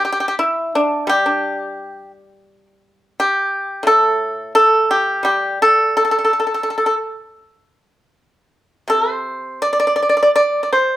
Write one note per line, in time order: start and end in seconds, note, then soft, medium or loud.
0.05 0.11 G4 soft
0.12 0.19 G4 medium
0.20 0.26 G4 soft
0.28 0.34 G4 medium
0.39 0.72 E4 medium
0.75 1.08 D4 medium
1.07 3.17 G3 medium
1.07 2.11 G4 medium
1.26 2.66 D4 soft
3.20 3.83 G4 medium
3.83 5.95 A2 medium
3.83 4.52 A4 medium
4.55 4.88 A4 medium
4.91 5.23 G4 medium
5.23 7.43 G3 soft
5.23 5.58 G4 medium
5.62 5.95 A4 medium
5.97 6.03 A4 medium
6.05 6.10 A4 soft
6.11 6.17 A4 soft
6.19 6.23 A4 soft
6.25 6.32 A4 soft
6.33 6.38 A4 soft
6.40 6.46 A4 soft
6.47 6.53 A4 soft
6.54 6.62 A4 soft
6.63 6.69 A4 soft
6.70 6.76 A4 soft
6.78 6.85 A4 soft
6.86 6.94 A4 soft
8.88 10.97 C3 soft
8.88 9.12 A4 medium
9.12 9.59 C5 medium
9.62 9.70 D5 medium
9.73 9.78 D5 soft
9.80 9.86 D5 medium
9.87 9.93 D5 medium
9.96 10.01 D5 medium
10.02 10.08 D5 soft
10.09 10.16 D5 soft
10.17 10.21 D5 soft
10.23 10.30 D5 medium
10.36 10.62 D5 medium
10.63 10.70 D5 soft
10.73 10.97 C5 medium